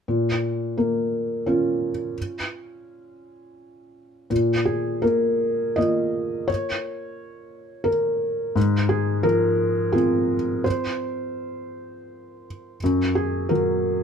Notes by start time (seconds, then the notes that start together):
0.08 A#2
0.78 A#3
1.46 C#4 F4
4.30 A#2
4.65 G#4
5.02 A#3 A#4
5.76 A#3 F4 D#5
6.48 C#5
7.84 A#4
8.56 G#2
8.89 G#4
9.23 F3 A#4
9.92 C4 F4 G#4
10.64 C5
12.84 F#2
13.15 G#4
13.49 F#3 A#4